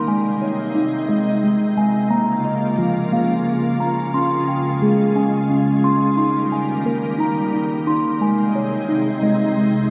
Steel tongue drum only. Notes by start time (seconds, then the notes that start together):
Already playing: C6
0.08 G#3 G#5
0.42 C#5
0.75 D#4
1.09 G#3 D#5
1.44 G#3
1.77 G#3 G#5
2.10 A#3 A#5
2.45 D#5
2.78 F3 F4
3.12 A#3 F5
3.46 A#3
3.80 A#3 A#5
4.14 C#4 C6
4.48 G5
4.82 G#3 G#4
5.16 C#4 G#5
5.50 C#4
5.84 C#4 C6
6.17 D#4 C6
6.52 G#5
6.85 A#3 A#4
7.18 D#4 A#5
7.54 D#4
7.87 D#4 C6
8.21 G#3 G#5
8.55 C#5
8.89 D#4
9.22 G#3 D#5
9.57 G#3